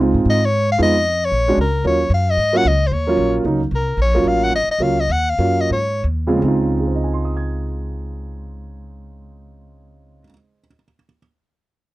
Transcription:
Already playing: C#2
0.00 G#3 C4 D#4 F4
0.14 G#2
0.25 G#2
0.30 D#5
0.45 C#5
0.72 F5
0.78 F2 G#3 B3 D#4 F4
0.83 D#5
1.25 C#5
1.31 A#1
1.48 G#3 C#4 D4 F#4
1.57 C#2 A#4
1.84 D#2 F#3 A#3 C#4 F4 C#5
2.10 F#2 F5
2.30 D#5
2.37 G#2
2.53 F#3 A#3 C#4 F4
2.57 F#5
2.65 C#2 D#5
2.87 C5
2.91 D#2 C#5
3.07 F#3 A#3 C#4 F4
3.17 A#1
3.44 C#2 F#3 A#3 C#4 D#4
3.71 C2
3.75 A#4
3.97 A#1
4.02 C#5
4.14 F#3 A#3 C#4 F4
4.24 A1 F5
4.44 F#5
4.50 G#1
4.55 D#5
4.67 muted upright bass stroke
4.71 D#5
4.79 C#2 F#3 A#3 C#4 F4
4.83 F5
5.00 D#5
5.09 D#2 F#5
5.30 F5
5.38 F#2 F#3 A#3 C#4 F4
5.61 D#5
5.70 G#2 C#5
6.04 D#2
6.27 C#2 F3 G#3 C4 F4
6.36 C#3 G#3
6.42 C#2 C4 D#4
6.48 F4
6.79 G#4
6.87 C5
6.95 D#5
7.04 G#5
7.14 C6
7.25 D#6
7.37 G#6

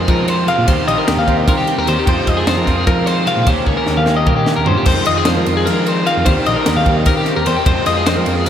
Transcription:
Already playing: F2 F3 G#3 C4 F4 G#4
0.08 F3 D#4 A#4, kick, ride
0.28 F4 C5, ride
0.46 C3 F3 G#3 C4 F4 F5, ride
0.58 A#2
0.65 D#2 D#3 G3 C4 G4 C5, kick, ride
0.86 A#1 G3 C4 F4 G4 D#5, ride
0.98 G4 A#4
1.07 D#2 D#3 G3 C4 G4, snare, ride
1.18 D#2 F5
1.26 D#2 G3 C4 G4, kick, ride
1.37 D#5
1.48 D#3 F4 A#4, kick, ride
1.57 G4
1.67 G4, snare, ride
1.78 D#2 A#4
1.86 D#2 D#3 G3 C4 G4 C5, ride
1.99 G4
2.05 F2 F3 G#3 C4 F4 C5, kick, ride
2.17 D#4
2.25 F2 G#3 C4 F4 D#5, kick, ride
2.37 G#4
2.45 F2 F3 G#3 C4 F4 C5, snare, ride
2.57 F3 A#4
2.66 F2 F3 G#3 C4 F4, kick, snare, ride
2.76 G#4
2.87 F3 D#4 A#4, kick, ride
3.06 F4 C5, ride
3.26 C3 F3 G#3 C4 F4 F5, ride
3.37 A#2
3.46 D#2 D#3 A#3 C#4 G4 C5, kick, ride
3.66 C#2 A#3 C#4 G4 G#4 C#5, kick
3.77 A#4
3.86 D#2 D#3 A#3 C#4 G4, snare
3.97 D#2 F5
4.06 D#2 A#3 C#4 G4, snare
4.17 D#5
4.27 D#3 G4 A#4, kick, mid tom
4.36 G4
4.46 G4, snare
4.56 D#2 A#4
4.65 G2 A#2 D#3 A#3 C#4 G4 C5, floor tom
4.77 G4
4.86 F2 F3 G#3 C4 F4 C5, kick, crash
5.05 F2 G#3 C4 F4 D#5, ride
5.17 G#4
5.25 F2 F3 G#3 C4 F4 C5, snare, ride
5.37 F3 A#4
5.45 F2 G#3 C4 F4, ride
5.57 G#4
5.66 F3 A#4, snare, ride
5.86 C5, ride
6.05 F3 G#3 C4 F4 F5, ride
6.17 F2
6.25 D#2 D#3 G3 C4 G4 C5, kick, ride
6.46 A#1 G3 C4 G4 D#5, ride
6.56 A#4
6.65 D#2 D#3 G3 C4 G4, snare, ride
6.76 D#2 F5
6.86 D#2 G3 C4 G4, kick, ride
6.97 D#5
7.06 D#3 A#4, kick, ride
7.17 G4
7.26 snare, ride
7.36 D#2 A#4
7.45 E2 D#3 G3 C4 G4 C5, ride
7.57 G4
7.65 F2 F3 G#3 C4 F4 C5, kick, ride
7.86 F2 G#3 C4 F4 D#5, snare, ride
7.97 G#4
8.06 F2 F3 G#3 C4 F4 C5, snare, ride
8.16 F3 A#4
8.24 F2 G#3 C4 F4, ride
8.36 G#4
8.46 A#4, ride

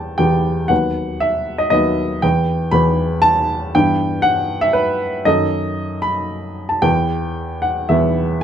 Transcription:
Already playing: E2 E3 B3 G4 G5 A5
0.18 E2 E3 B3 G4 G5
0.68 D#2 F#3 B3 B4 F#5
1.20 E5
1.58 D#5
1.70 D#2 F#3 B3 B4 D#5
2.22 E2 E3 B3 B4 G5
2.71 E2 E3 B3 B4 B5
3.22 A5
3.75 G2 E3 B3 B4 G5
4.22 F#5
4.61 E5
4.73 B4
5.25 F#2 D#3 D#4 A4 D#5
6.02 B5
6.69 A5
6.82 E2 E3 B3 B4 G5
7.62 F#5
7.89 E2 E3 B3 B4 E5

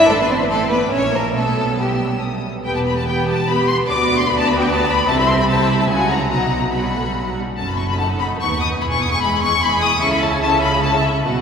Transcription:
Already playing: D4
0.08 A1 A3 A4 C6
0.20 B3 B4
0.30 C4 C5
0.39 B3 B4
0.49 A3 C4 A4 C6
0.70 B3 B4 D6
0.91 A#1 C#4 C#5 E6
1.13 A#3 A#4
1.35 B1 A3 B3 A4 E6
1.79 G3 G4 E6
2.22 D#6
2.64 E1 E2 B3 G4 B4 G5
2.75 A5
2.86 B5
2.97 A5
3.05 B3 G4 B4 G5
3.27 A5
3.46 B3 G4 B4 B5
3.67 C6
3.86 D2 B3 F#4 B4 D5 D6
4.18 C6
4.26 B3 F#4 B4 D5 B5
4.39 A5
4.48 B5
4.59 G5
4.69 A5
4.89 B5
5.07 C2 C3 C4 E4 A4 E5 A5
5.19 B5
5.28 C6
5.39 B5
5.48 C4 E4 A4 E5 A5
5.70 B5
5.80 A5
5.89 C#2 C#3 F#3 E4 F#4 F#5 G#5
6.11 A#5
6.31 B1 B2 F#3 D#4 F#4 F#5 A#5
6.73 F#3 F#4 F#5 B5
6.85 G3
6.95 A3
7.06 G3
7.16 F#3
7.36 G3
7.58 F#1 F#2 C#4 F#4 A4 A5
7.69 B5
7.78 C#6
7.90 B5
7.99 D#4 F#5 A5
8.20 B5
8.39 D#2 B3 B4 F#5 C#6
8.61 D#6
8.80 E1 E2 B3 E4 G#4 G#5 B5
8.91 C#6
9.01 D#6
9.12 C#6
9.21 G#3 B5
9.42 C#6
9.61 G#3 E4 G#4 G#5 B5
9.81 D#6
10.01 C#2 C#3 C#4 E4 A4 E5 C#6
10.12 B5
10.21 A5
10.32 G#5
10.41 C#4 E4 A4 E5 A5
10.62 B5
10.82 C#4 E4 A4 E5 A5
11.04 E5
11.25 B1 B2 F#3 F#4 B4 D#5 F#5

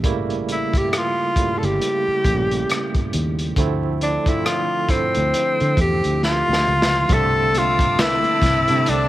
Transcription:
0.03 A1 C#3 G3 A3 A#3 E4, kick, closed hi-hat
0.30 closed hi-hat
0.49 E4, closed hi-hat
0.73 muted fingered electric bass stroke, kick, closed hi-hat
0.77 G4
0.90 G4, cross-stick, closed hi-hat
0.97 F4
1.36 C#3 G3 A3 A#3 E4, muted fingered electric bass stroke, kick, closed hi-hat
1.58 A4
1.63 G1 G4, closed hi-hat
1.82 closed hi-hat
2.08 muted fingered electric bass stroke
2.25 A#1 C#3 G3 A3 A#3 C4, kick, closed hi-hat
2.34 C#4
2.51 closed hi-hat
2.69 cross-stick, closed hi-hat
2.94 kick, closed hi-hat
3.13 D#2, closed hi-hat
3.39 closed hi-hat
3.56 D2 D3 F3 A3 C4 E4, kick, closed hi-hat
4.01 D4, closed hi-hat
4.26 D3 F3 A3 C4 E4 F4, muted fingered electric bass stroke, kick, closed hi-hat
4.46 F4, cross-stick, closed hi-hat
4.89 D3 F3 A3 C4 E4, muted fingered electric bass stroke, kick, cross-stick, closed hi-hat
5.15 D2, closed hi-hat
5.34 closed hi-hat
5.60 D3, closed hi-hat
5.77 E2 D3 F3 A3 C4 G4, kick, closed hi-hat
6.04 D2, closed hi-hat
6.23 F4, snare
6.49 D2
6.53 snare
6.68 C#2
6.82 snare
7.09 C2 D3 G3 A3 C4 E5 A5 D6 E6, kick, closed hi-hat, low conga
7.13 A4
7.54 F4, closed hi-hat, high conga
7.79 kick, closed hi-hat
7.99 E4, finger snap, snare, closed hi-hat
8.23 closed hi-hat, muted conga, high conga
8.42 C2, kick, snare, closed hi-hat, high conga, low conga
8.67 C3 D3 G3 A3 C4 D4, closed hi-hat
8.85 C2 D4, closed hi-hat, muted conga

